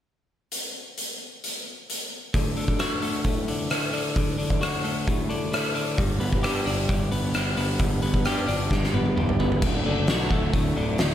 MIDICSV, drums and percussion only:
0, 0, Header, 1, 2, 480
1, 0, Start_track
1, 0, Key_signature, 2, "major"
1, 0, Tempo, 455235
1, 545, Time_signature, 4, 2, 24, 8
1, 11750, End_track
2, 0, Start_track
2, 0, Title_t, "Drums"
2, 546, Note_on_c, 9, 42, 47
2, 652, Note_off_c, 9, 42, 0
2, 1030, Note_on_c, 9, 42, 46
2, 1135, Note_off_c, 9, 42, 0
2, 1517, Note_on_c, 9, 42, 45
2, 1622, Note_off_c, 9, 42, 0
2, 2000, Note_on_c, 9, 42, 47
2, 2106, Note_off_c, 9, 42, 0
2, 2468, Note_on_c, 9, 36, 92
2, 2468, Note_on_c, 9, 46, 57
2, 2573, Note_off_c, 9, 46, 0
2, 2574, Note_off_c, 9, 36, 0
2, 2706, Note_on_c, 9, 46, 40
2, 2812, Note_off_c, 9, 46, 0
2, 2827, Note_on_c, 9, 36, 64
2, 2932, Note_off_c, 9, 36, 0
2, 2944, Note_on_c, 9, 46, 51
2, 2952, Note_on_c, 9, 37, 86
2, 3050, Note_off_c, 9, 46, 0
2, 3057, Note_off_c, 9, 37, 0
2, 3188, Note_on_c, 9, 46, 40
2, 3293, Note_off_c, 9, 46, 0
2, 3421, Note_on_c, 9, 46, 55
2, 3424, Note_on_c, 9, 36, 84
2, 3526, Note_off_c, 9, 46, 0
2, 3530, Note_off_c, 9, 36, 0
2, 3671, Note_on_c, 9, 46, 40
2, 3777, Note_off_c, 9, 46, 0
2, 3905, Note_on_c, 9, 46, 53
2, 3912, Note_on_c, 9, 37, 82
2, 4011, Note_off_c, 9, 46, 0
2, 4018, Note_off_c, 9, 37, 0
2, 4153, Note_on_c, 9, 46, 40
2, 4259, Note_off_c, 9, 46, 0
2, 4387, Note_on_c, 9, 36, 86
2, 4387, Note_on_c, 9, 46, 53
2, 4492, Note_off_c, 9, 46, 0
2, 4493, Note_off_c, 9, 36, 0
2, 4636, Note_on_c, 9, 46, 38
2, 4741, Note_off_c, 9, 46, 0
2, 4748, Note_on_c, 9, 36, 69
2, 4854, Note_off_c, 9, 36, 0
2, 4876, Note_on_c, 9, 46, 51
2, 4884, Note_on_c, 9, 37, 85
2, 4982, Note_off_c, 9, 46, 0
2, 4989, Note_off_c, 9, 37, 0
2, 5116, Note_on_c, 9, 46, 38
2, 5221, Note_off_c, 9, 46, 0
2, 5352, Note_on_c, 9, 36, 85
2, 5360, Note_on_c, 9, 46, 52
2, 5458, Note_off_c, 9, 36, 0
2, 5466, Note_off_c, 9, 46, 0
2, 5594, Note_on_c, 9, 46, 38
2, 5700, Note_off_c, 9, 46, 0
2, 5835, Note_on_c, 9, 46, 55
2, 5842, Note_on_c, 9, 37, 88
2, 5940, Note_off_c, 9, 46, 0
2, 5948, Note_off_c, 9, 37, 0
2, 6072, Note_on_c, 9, 46, 39
2, 6177, Note_off_c, 9, 46, 0
2, 6308, Note_on_c, 9, 36, 100
2, 6310, Note_on_c, 9, 46, 58
2, 6413, Note_off_c, 9, 36, 0
2, 6415, Note_off_c, 9, 46, 0
2, 6547, Note_on_c, 9, 46, 42
2, 6653, Note_off_c, 9, 46, 0
2, 6670, Note_on_c, 9, 36, 70
2, 6775, Note_off_c, 9, 36, 0
2, 6787, Note_on_c, 9, 46, 56
2, 6794, Note_on_c, 9, 37, 88
2, 6892, Note_off_c, 9, 46, 0
2, 6899, Note_off_c, 9, 37, 0
2, 7033, Note_on_c, 9, 46, 41
2, 7138, Note_off_c, 9, 46, 0
2, 7267, Note_on_c, 9, 36, 91
2, 7269, Note_on_c, 9, 46, 56
2, 7372, Note_off_c, 9, 36, 0
2, 7375, Note_off_c, 9, 46, 0
2, 7508, Note_on_c, 9, 46, 44
2, 7614, Note_off_c, 9, 46, 0
2, 7741, Note_on_c, 9, 46, 61
2, 7748, Note_on_c, 9, 37, 91
2, 7847, Note_off_c, 9, 46, 0
2, 7854, Note_off_c, 9, 37, 0
2, 7983, Note_on_c, 9, 46, 45
2, 8088, Note_off_c, 9, 46, 0
2, 8217, Note_on_c, 9, 46, 61
2, 8221, Note_on_c, 9, 36, 95
2, 8322, Note_off_c, 9, 46, 0
2, 8327, Note_off_c, 9, 36, 0
2, 8458, Note_on_c, 9, 46, 46
2, 8564, Note_off_c, 9, 46, 0
2, 8581, Note_on_c, 9, 36, 75
2, 8686, Note_off_c, 9, 36, 0
2, 8698, Note_on_c, 9, 46, 58
2, 8705, Note_on_c, 9, 37, 86
2, 8803, Note_off_c, 9, 46, 0
2, 8811, Note_off_c, 9, 37, 0
2, 8947, Note_on_c, 9, 46, 42
2, 9052, Note_off_c, 9, 46, 0
2, 9182, Note_on_c, 9, 36, 84
2, 9190, Note_on_c, 9, 38, 47
2, 9287, Note_off_c, 9, 36, 0
2, 9296, Note_off_c, 9, 38, 0
2, 9318, Note_on_c, 9, 38, 37
2, 9424, Note_off_c, 9, 38, 0
2, 9424, Note_on_c, 9, 48, 58
2, 9530, Note_off_c, 9, 48, 0
2, 9549, Note_on_c, 9, 48, 50
2, 9654, Note_off_c, 9, 48, 0
2, 9674, Note_on_c, 9, 47, 60
2, 9780, Note_off_c, 9, 47, 0
2, 9795, Note_on_c, 9, 45, 53
2, 9901, Note_off_c, 9, 45, 0
2, 9911, Note_on_c, 9, 43, 76
2, 10016, Note_off_c, 9, 43, 0
2, 10036, Note_on_c, 9, 43, 66
2, 10142, Note_off_c, 9, 43, 0
2, 10144, Note_on_c, 9, 49, 83
2, 10145, Note_on_c, 9, 36, 99
2, 10249, Note_off_c, 9, 49, 0
2, 10250, Note_off_c, 9, 36, 0
2, 10622, Note_on_c, 9, 46, 44
2, 10630, Note_on_c, 9, 38, 98
2, 10728, Note_off_c, 9, 46, 0
2, 10735, Note_off_c, 9, 38, 0
2, 10867, Note_on_c, 9, 36, 74
2, 10972, Note_off_c, 9, 36, 0
2, 11108, Note_on_c, 9, 36, 87
2, 11113, Note_on_c, 9, 46, 46
2, 11213, Note_off_c, 9, 36, 0
2, 11218, Note_off_c, 9, 46, 0
2, 11581, Note_on_c, 9, 46, 49
2, 11589, Note_on_c, 9, 38, 93
2, 11687, Note_off_c, 9, 46, 0
2, 11694, Note_off_c, 9, 38, 0
2, 11750, End_track
0, 0, End_of_file